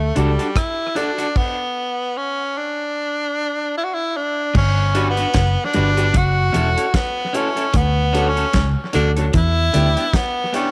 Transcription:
Already playing: D2 A3
0.15 C#2 G3 D4 F#4 A4 D5, closed hi-hat
0.39 D4 F#4 A4, closed hi-hat
0.56 E4, kick, cross-stick, closed hi-hat
0.95 D4 F#4 A4 D5, closed hi-hat
1.18 D4 F#4 A4, closed hi-hat
1.36 B3, kick, crash
2.17 C#4
2.57 D4
3.77 E4
3.84 F#4
3.94 E4
4.17 D4
4.55 G1 G2 C#4, kick, crash
4.95 D4 F#4 G4 B4 D5, closed hi-hat
5.10 B3
5.17 D4 F#4 B4, closed hi-hat
5.34 F#1 F#2, kick, snare, closed hi-hat
5.65 D4
5.74 G1 G2 D4 F#4 G4 B4 D5, closed hi-hat
5.97 D4 F#4 G4 B4 D5, closed hi-hat
6.14 F#1 F#2 F#4, kick, closed hi-hat
6.52 E1 E2 C#4 E4 F#4 A4 C#5, closed hi-hat
6.77 C#4 E4 A4 C#5, closed hi-hat
6.94 B3, kick, snare, closed hi-hat
7.33 C#4 E4 F#4 A4 C#5, closed hi-hat
7.56 C#4 E4 A4, closed hi-hat
7.74 D2 D3 B3, kick, closed hi-hat
8.13 C#4 D4 F#4 A4 C#5, closed hi-hat
8.29 C#4
8.36 C#4 F#4 A4, closed hi-hat
8.53 C#2 C#3, kick, snare, closed hi-hat
8.93 D2 D3 C#4 D4 F#4 A4 C#5, closed hi-hat
9.16 C#4 D4 F#4 A4 C#5, closed hi-hat
9.33 E2 E3 E4, kick, closed hi-hat
9.73 D2 D3 B3 D4 E4 G4 B4 D5, closed hi-hat
9.96 B3 D4 G4, closed hi-hat
10.13 B3, kick, snare, closed hi-hat
10.53 B3 C#4 D4 E4 G4 B4 D5, closed hi-hat

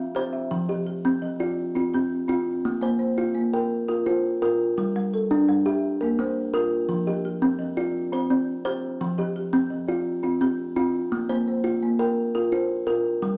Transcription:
Already playing: C4 E5 F5
0.15 G4 C5
0.33 E5
0.51 F3
0.69 F3 G4
0.87 G4
1.05 C4
1.22 F3
1.40 F4 D5
1.75 C4 F4
1.94 C4 G4
2.28 C4 F4
2.65 A#3
2.81 A#3 C5
2.99 C5
3.18 F4
3.35 A#3
3.53 A#4 G5
3.88 F4 A#4
4.06 F4 C5
4.42 F4 A#4
4.78 G3
4.96 G3
5.14 A4
5.31 D4
5.49 G3
5.66 G4 E5
6.01 A#3 A#4
6.19 A#3 C5
6.54 F4 A#4
6.89 F3
7.07 F3 G4
7.25 G4
7.42 C4
7.59 F3
7.77 F4 D5
8.12 C4 C5
8.30 C4 D5
8.65 G4 C5
9.01 F3
9.18 F3 G4
9.36 G4
9.53 C4
9.71 F3
9.88 F4 D5
10.23 C4 F4
10.41 C4 G4
10.76 C4 F4
11.12 A#3
11.29 A#3 C5
11.48 C5
11.64 F4
11.83 A#3
11.99 A#4 G5
12.35 F4 A#4
12.52 F4 C5
12.87 F4 A#4
13.22 G3

